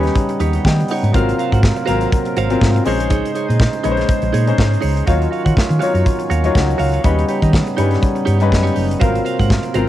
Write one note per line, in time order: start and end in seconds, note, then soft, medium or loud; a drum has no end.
0.00 1.12 C#3 medium
0.00 1.12 G3 medium
0.00 1.15 G3 medium
0.00 1.12 B3 medium
0.00 1.16 C#4 medium
0.00 1.12 D#4 medium
0.00 1.15 D#4 medium
0.00 1.15 A#4 medium
0.00 0.42 B4 medium
0.00 1.15 C#5 medium
0.00 closed hi-hat soft
0.05 0.15 D#4 medium
0.05 0.16 G4 medium
0.05 0.16 C#5 medium
0.05 snare soft
0.16 kick loud
0.16 closed hi-hat medium
0.29 muted clean electric guitar stroke medium
0.29 closed hi-hat soft
0.40 0.57 D#2 medium
0.40 0.55 D#4 medium
0.40 0.54 G4 medium
0.40 0.64 B4 medium
0.40 0.53 C#5 medium
0.40 0.64 D#5 medium
0.40 closed hi-hat medium
0.53 0.64 D#4 medium
0.53 0.65 G4 medium
0.53 0.65 C#5 medium
0.53 closed hi-hat soft
0.65 0.82 D#3 medium
0.65 0.88 D#5 medium
0.65 0.88 G5 medium
0.65 kick loud
0.65 snare loud
0.80 muted clean electric guitar stroke soft
0.80 closed hi-hat soft
0.88 1.04 D#4 medium
0.88 1.04 G4 medium
0.88 1.36 D#5 medium
0.88 1.36 F#5 medium
0.88 open hi-hat medium
0.92 1.03 C#5 medium
1.03 1.11 G#2 medium
1.03 1.19 D#4 soft
1.03 1.14 G4 medium
1.03 1.15 C#5 medium
1.03 closed hi-hat soft
1.13 1.31 G#1 medium
1.13 2.84 C3 medium
1.13 1.64 F#3 medium
1.13 2.84 F#3 medium
1.13 2.84 A#3 medium
1.13 1.64 C4 medium
1.13 2.84 F4 medium
1.13 1.65 F4 medium
1.13 1.34 F#4 medium
1.13 1.65 A#4 medium
1.13 1.35 C5 medium
1.13 1.35 F5 loud
1.13 kick loud
1.13 closed hi-hat medium
1.29 closed hi-hat soft
1.38 1.53 F#4 medium
1.38 1.52 C5 medium
1.38 1.52 F5 medium
1.38 closed hi-hat soft
1.52 1.70 G#2 medium
1.52 1.61 F#4 medium
1.52 1.61 C5 medium
1.52 1.63 F#5 medium
1.52 kick medium
1.52 closed hi-hat soft
1.63 muted clean electric guitar stroke soft
1.63 kick loud
1.63 snare loud
1.76 muted clean electric guitar stroke soft
1.76 closed hi-hat soft
1.86 2.05 G#1 medium
1.86 2.30 F#3 medium
1.86 2.31 C4 medium
1.86 2.31 F4 medium
1.86 2.01 F#4 medium
1.86 2.31 A#4 loud
1.86 2.00 C5 medium
1.86 1.99 F5 medium
1.86 closed hi-hat medium
2.00 2.11 C5 medium
2.00 2.12 F5 medium
2.00 closed hi-hat soft
2.12 kick loud
2.12 closed hi-hat medium
2.25 muted clean electric guitar stroke soft
2.25 closed hi-hat soft
2.37 2.54 G#1 medium
2.37 2.51 F#4 medium
2.37 2.50 C5 medium
2.37 2.49 F5 medium
2.37 closed hi-hat medium
2.50 2.86 F#3 medium
2.50 2.86 C4 medium
2.50 2.86 F4 medium
2.50 2.60 F#4 soft
2.50 2.86 A#4 medium
2.50 2.61 C5 medium
2.50 2.62 F5 medium
2.50 closed hi-hat soft
2.61 2.79 G#2 loud
2.61 muted clean electric guitar stroke soft
2.61 kick loud
2.61 snare loud
2.76 muted clean electric guitar stroke medium
2.76 closed hi-hat soft
2.85 3.21 A#1 medium
2.85 5.05 C#3 medium
2.85 3.65 G#3 medium
2.85 5.05 G#3 medium
2.85 3.65 C#4 medium
2.85 3.65 D#4 medium
2.85 2.99 D#4 medium
2.85 5.05 D#4 medium
2.85 2.99 G#4 medium
2.85 3.66 C5 loud
2.85 5.06 C5 medium
2.85 2.98 C#5 medium
2.85 open hi-hat medium
2.99 3.09 D#4 soft
2.99 3.09 G#4 soft
2.99 3.10 C#5 medium
2.99 closed hi-hat medium
3.10 3.31 D#4 medium
3.10 3.31 G#4 medium
3.10 3.31 C#5 medium
3.10 kick loud
3.10 closed hi-hat medium
3.25 closed hi-hat soft
3.35 3.49 D#4 medium
3.35 3.48 G#4 medium
3.35 3.48 C#5 medium
3.35 closed hi-hat medium
3.48 3.67 A#2 medium
3.48 3.58 D#4 medium
3.48 3.59 G#4 medium
3.48 3.60 D#5 medium
3.48 closed hi-hat soft
3.59 muted clean electric guitar stroke soft
3.59 kick loud
3.59 snare loud
3.73 muted clean electric guitar stroke soft
3.73 closed hi-hat soft
3.83 4.02 A#1 medium
3.83 4.27 G#3 medium
3.83 4.27 C#4 medium
3.83 3.98 D#4 medium
3.83 4.28 D#4 medium
3.83 3.96 G#4 medium
3.83 3.91 B4 medium
3.83 3.96 C#5 medium
3.83 closed hi-hat medium
3.91 4.31 C5 medium
3.97 4.08 D#4 soft
3.97 4.09 G#4 medium
3.97 4.09 C#5 medium
3.97 snare soft
3.97 closed hi-hat soft
4.09 muted clean electric guitar stroke soft
4.09 kick loud
4.09 closed hi-hat medium
4.22 4.30 A#1 medium
4.22 muted clean electric guitar stroke soft
4.22 closed hi-hat soft
4.33 4.51 A#2 medium
4.33 4.47 D#4 medium
4.33 4.46 G#4 medium
4.33 4.45 C#5 medium
4.33 closed hi-hat medium
4.46 4.89 G#3 medium
4.46 4.89 C#4 medium
4.46 4.56 D#4 soft
4.46 4.89 D#4 medium
4.46 4.57 G#4 medium
4.46 4.89 C5 medium
4.46 4.57 C#5 medium
4.46 closed hi-hat soft
4.57 4.76 G#2 medium
4.57 muted clean electric guitar stroke soft
4.57 kick loud
4.57 snare loud
4.71 muted clean electric guitar stroke medium
4.71 closed hi-hat soft
4.81 5.00 C#2 medium
4.81 4.95 D#4 medium
4.81 4.94 G#4 medium
4.81 4.94 C#5 medium
4.81 open hi-hat medium
4.95 5.11 D#4 soft
4.95 5.06 G#4 medium
4.95 5.06 C#5 medium
4.95 closed hi-hat soft
5.06 5.25 D#2 medium
5.06 7.02 D#3 medium
5.06 7.02 F#3 medium
5.06 5.58 F#3 medium
5.06 7.02 C#4 medium
5.06 5.58 D#4 medium
5.06 7.02 F4 medium
5.06 5.59 F4 medium
5.06 5.27 F#4 medium
5.06 5.28 C#5 medium
5.06 5.59 C#5 medium
5.06 5.28 F5 medium
5.06 kick loud
5.06 closed hi-hat medium
5.22 closed hi-hat soft
5.31 5.45 F#4 medium
5.31 5.44 C#5 medium
5.31 5.44 F5 medium
5.31 closed hi-hat medium
5.45 5.54 D#3 medium
5.45 5.54 F#4 medium
5.45 5.55 C#5 medium
5.45 5.56 F#5 medium
5.45 kick medium
5.45 closed hi-hat medium
5.57 kick loud
5.57 snare loud
5.69 5.78 D#3 medium
5.69 muted clean electric guitar stroke medium
5.69 closed hi-hat soft
5.79 6.24 F#3 medium
5.79 6.25 D#4 medium
5.79 6.25 F4 medium
5.79 5.94 F#4 medium
5.79 5.94 C#5 medium
5.79 6.25 C#5 loud
5.79 5.93 F5 medium
5.79 closed hi-hat medium
5.94 6.02 F#2 medium
5.94 6.05 F#4 soft
5.94 6.05 C#5 medium
5.94 6.05 F5 medium
5.94 closed hi-hat soft
6.06 muted clean electric guitar stroke soft
6.06 kick loud
6.06 closed hi-hat medium
6.19 muted clean electric guitar stroke medium
6.19 closed hi-hat soft
6.30 6.48 D#2 medium
6.30 6.44 F#4 medium
6.30 6.43 C#5 medium
6.30 6.43 F5 medium
6.30 closed hi-hat medium
6.44 6.85 F#3 loud
6.44 6.86 D#4 medium
6.44 6.86 F4 medium
6.44 6.53 F#4 medium
6.44 6.54 C#5 medium
6.44 6.56 C#5 medium
6.44 6.55 F5 medium
6.44 closed hi-hat soft
6.55 6.72 C#2 medium
6.55 6.79 D#5 medium
6.55 6.78 F#5 medium
6.55 muted clean electric guitar stroke soft
6.55 kick loud
6.55 snare loud
6.68 muted clean electric guitar stroke soft
6.68 closed hi-hat soft
6.78 6.97 C#2 medium
6.78 6.94 F#4 medium
6.78 6.93 C#5 medium
6.78 7.27 C#5 medium
6.78 6.92 F5 medium
6.78 7.26 F5 medium
6.78 open hi-hat medium
6.93 7.04 F#4 medium
6.93 7.04 C#5 medium
6.93 7.08 F5 medium
6.93 closed hi-hat soft
7.04 7.22 D#2 medium
7.04 8.99 C#3 medium
7.04 7.55 G3 medium
7.04 8.99 G3 soft
7.04 8.99 B3 medium
7.04 7.55 C#4 medium
7.04 7.24 D#4 medium
7.04 7.55 D#4 medium
7.04 8.99 D#4 medium
7.04 7.25 G4 medium
7.04 7.56 B4 medium
7.04 7.25 C#5 medium
7.04 kick loud
7.04 closed hi-hat medium
7.19 closed hi-hat soft
7.28 7.43 D#4 medium
7.28 7.42 G4 medium
7.28 7.42 C#5 medium
7.28 closed hi-hat medium
7.42 7.60 D#3 medium
7.42 7.52 D#4 soft
7.42 7.52 G4 medium
7.42 7.53 D#5 medium
7.42 kick medium
7.42 closed hi-hat soft
7.53 kick loud
7.53 snare loud
7.67 muted clean electric guitar stroke medium
7.67 closed hi-hat soft
7.77 7.96 G2 medium
7.77 8.21 G3 medium
7.77 8.21 C#4 medium
7.77 7.91 D#4 medium
7.77 8.21 D#4 medium
7.77 7.90 G4 medium
7.77 8.21 B4 medium
7.77 7.90 C#5 loud
7.77 closed hi-hat medium
7.91 8.00 D#4 medium
7.91 8.01 G4 medium
7.91 8.01 C#5 medium
7.91 snare soft
7.91 closed hi-hat soft
8.03 kick loud
8.03 closed hi-hat medium
8.15 muted clean electric guitar stroke soft
8.15 closed hi-hat soft
8.25 8.52 G2 loud
8.25 8.39 D#4 medium
8.25 8.39 G4 medium
8.25 8.38 C#5 medium
8.25 closed hi-hat medium
8.39 8.82 G3 medium
8.39 8.82 C#4 medium
8.39 8.49 D#4 medium
8.39 8.83 D#4 medium
8.39 8.49 G4 medium
8.39 8.83 B4 loud
8.39 8.50 C#5 medium
8.39 closed hi-hat soft
8.50 8.69 F#2 loud
8.50 muted clean electric guitar stroke soft
8.50 kick loud
8.50 snare loud
8.63 8.73 D#4 medium
8.63 8.75 G4 medium
8.63 8.75 C#5 medium
8.63 closed hi-hat soft
8.75 8.94 F#1 medium
8.75 8.92 D#4 medium
8.75 8.88 G4 medium
8.75 8.88 C#5 medium
8.75 open hi-hat medium
8.89 muted clean electric guitar stroke soft
8.89 closed hi-hat medium
9.00 9.18 G#1 medium
9.00 9.89 C3 medium
9.00 9.89 F#3 medium
9.00 9.51 F#3 medium
9.00 9.89 A#3 medium
9.00 9.52 C4 medium
9.00 9.89 F4 medium
9.00 9.52 F4 medium
9.00 9.20 F#4 medium
9.00 9.52 A#4 medium
9.00 9.21 C5 medium
9.00 9.21 F5 medium
9.00 kick loud
9.00 closed hi-hat medium
9.15 closed hi-hat soft
9.25 9.40 F#4 medium
9.25 9.39 C5 medium
9.25 9.39 F5 medium
9.25 closed hi-hat medium
9.39 9.57 G#2 medium
9.39 9.49 F#4 medium
9.39 9.50 C5 medium
9.39 9.51 F#5 medium
9.39 kick medium
9.39 closed hi-hat soft
9.50 kick loud
9.50 snare loud
9.63 muted clean electric guitar stroke medium
9.63 closed hi-hat soft
9.74 9.89 G#1 medium
9.74 9.89 F#3 medium
9.74 9.89 C4 medium
9.74 9.89 F4 medium
9.74 9.88 F#4 medium
9.74 9.89 A#4 medium
9.74 9.88 C5 medium
9.74 9.87 F5 medium
9.74 closed hi-hat medium